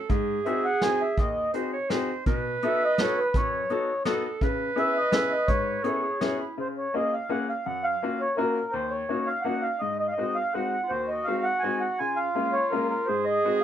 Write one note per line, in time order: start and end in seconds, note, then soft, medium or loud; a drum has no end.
0.00 0.12 A4 medium
0.09 0.37 G#2 medium
0.09 1.36 G#4 loud
0.09 kick medium
0.09 closed hi-hat soft
0.46 0.65 C4 medium
0.46 0.65 D#4 medium
0.46 0.65 F#4 medium
0.46 0.66 G#4 medium
0.46 0.65 E5 medium
0.46 closed hi-hat soft
0.65 0.82 F#5 medium
0.81 1.01 C4 medium
0.81 1.01 D#4 medium
0.81 1.01 F#4 soft
0.81 1.01 G#4 medium
0.81 1.02 G#5 medium
0.81 snare medium
0.81 closed hi-hat soft
1.01 1.19 E5 medium
1.18 1.45 D#2 medium
1.18 1.52 D#5 medium
1.18 kick medium
1.18 closed hi-hat soft
1.53 1.73 C4 medium
1.53 1.73 D#4 soft
1.53 1.73 F#4 soft
1.53 1.74 G#4 medium
1.53 1.71 C5 medium
1.53 closed hi-hat soft
1.73 1.91 C#5 medium
1.90 2.09 C4 medium
1.90 2.09 D#4 medium
1.90 2.10 F#4 medium
1.90 2.10 G#4 medium
1.90 2.26 C5 medium
1.90 snare medium
1.90 closed hi-hat soft
2.26 2.54 B2 medium
2.26 3.77 B4 loud
2.26 kick medium
2.26 closed hi-hat soft
2.62 2.82 B3 medium
2.62 2.82 D#4 medium
2.62 2.82 F#4 medium
2.62 2.83 A4 medium
2.62 2.84 E5 medium
2.62 closed hi-hat soft
2.84 3.00 D#5 medium
2.98 3.18 B3 medium
2.98 3.18 D#4 medium
2.98 3.18 F#4 medium
2.98 3.18 A4 medium
2.98 3.19 C#5 medium
2.98 snare medium
2.98 closed hi-hat soft
3.18 3.35 B4 medium
3.34 3.62 F#2 medium
3.34 4.03 C#5 medium
3.34 kick medium
3.34 closed hi-hat soft
3.70 3.89 B3 medium
3.70 3.90 D#4 soft
3.70 3.90 F#4 medium
3.70 3.90 A4 medium
3.70 closed hi-hat soft
4.05 4.25 B3 medium
4.05 4.25 D#4 medium
4.05 4.25 F#4 medium
4.05 4.24 A4 medium
4.05 4.25 A4 medium
4.05 snare medium
4.05 closed hi-hat soft
4.25 4.45 A4 medium
4.41 4.69 C#3 medium
4.41 5.85 B4 loud
4.41 kick medium
4.41 closed hi-hat soft
4.76 4.96 B3 medium
4.76 4.96 C#4 medium
4.76 4.96 E4 medium
4.76 4.96 G#4 medium
4.76 4.97 E5 loud
4.76 closed hi-hat soft
4.97 5.14 D#5 medium
5.12 5.31 B3 medium
5.12 5.32 C#4 medium
5.12 5.32 E4 medium
5.12 5.32 G#4 medium
5.12 5.32 E5 medium
5.12 snare medium
5.12 closed hi-hat soft
5.31 5.49 D#5 medium
5.47 5.77 G#2 medium
5.47 6.36 C#5 medium
5.47 kick medium
5.47 closed hi-hat medium
5.84 6.04 B3 medium
5.84 6.04 C#4 soft
5.84 6.04 E4 soft
5.84 6.05 G#4 medium
5.84 6.04 A4 medium
5.84 closed hi-hat soft
6.03 6.22 G#4 medium
6.20 6.40 B3 medium
6.20 6.41 C#4 medium
6.20 6.41 E4 medium
6.20 6.42 F#4 medium
6.20 6.41 G#4 medium
6.20 snare medium
6.20 closed hi-hat soft
6.41 6.58 E4 medium
6.58 6.85 C#3 medium
6.58 6.68 C5 medium
6.77 6.95 C#5 medium
6.94 7.13 A#3 medium
6.94 7.14 C#4 soft
6.94 7.14 F4 soft
6.94 7.14 G#4 medium
6.94 7.14 D#5 medium
7.13 7.31 F5 medium
7.30 7.49 A#3 medium
7.30 7.49 C#4 medium
7.30 7.49 F4 soft
7.30 7.50 G#4 medium
7.30 7.48 F#5 medium
7.49 7.67 F5 medium
7.65 7.93 F#2 medium
7.65 7.86 F#5 medium
7.83 8.21 F5 medium
8.03 8.21 A#3 soft
8.03 8.22 C#4 soft
8.03 8.22 F4 soft
8.03 8.22 F#4 medium
8.20 8.37 C#5 medium
8.37 8.57 A#3 medium
8.37 8.57 C#4 soft
8.37 8.57 F4 medium
8.37 8.57 F#4 medium
8.37 8.74 A#4 medium
8.72 9.01 D#2 medium
8.72 8.93 C5 medium
8.90 9.29 C#5 medium
9.09 9.29 A#3 soft
9.09 9.29 C#4 soft
9.09 9.29 D#4 soft
9.09 9.29 F#4 medium
9.27 9.45 F5 medium
9.42 9.65 A#3 medium
9.42 9.65 C#4 soft
9.42 9.64 F#5 medium
9.46 9.65 D#4 medium
9.46 9.65 F#4 medium
9.62 9.81 F5 medium
9.79 10.09 G#2 medium
9.79 9.98 D#5 medium
9.99 10.07 D#5 medium
10.08 10.14 F5 medium
10.12 10.37 D#5 medium
10.18 10.37 G#3 soft
10.18 10.37 C4 soft
10.18 10.37 D#4 soft
10.18 10.38 F#4 medium
10.35 10.54 F5 medium
10.53 10.73 G#3 medium
10.53 10.74 C4 soft
10.53 10.74 D#4 soft
10.53 10.74 F#4 medium
10.53 10.91 F#5 medium
10.83 10.92 F4 medium
10.89 11.18 D#2 medium
10.89 12.02 F#4 medium
10.89 11.10 C5 medium
11.08 11.27 D#5 medium
11.24 11.46 G#3 soft
11.24 11.47 C4 soft
11.24 11.47 D#4 soft
11.24 11.47 F#4 medium
11.24 11.46 F5 medium
11.44 11.63 F#5 medium
11.59 11.82 G#3 medium
11.59 11.83 C4 medium
11.59 11.83 D#4 medium
11.59 11.81 G#5 medium
11.64 11.83 F#4 medium
11.80 11.99 F#5 medium
11.98 12.28 C#3 medium
11.98 13.10 F4 medium
11.98 12.19 G#5 medium
12.16 12.55 F5 medium
12.35 12.55 G#3 soft
12.35 12.55 A#3 soft
12.35 12.55 C#4 soft
12.35 12.55 F4 medium
12.53 12.72 C#5 medium
12.70 12.91 G#3 medium
12.70 12.92 A#3 soft
12.70 12.92 C#4 soft
12.70 12.92 F4 medium
12.70 12.87 A#4 medium
12.89 13.08 A#4 medium
13.06 13.36 G#2 medium
13.06 13.64 G#4 loud
13.06 13.25 C5 medium
13.25 13.63 D#5 medium
13.44 13.63 G#3 medium
13.44 13.64 C4 soft
13.44 13.64 D#4 soft
13.44 13.64 F#4 medium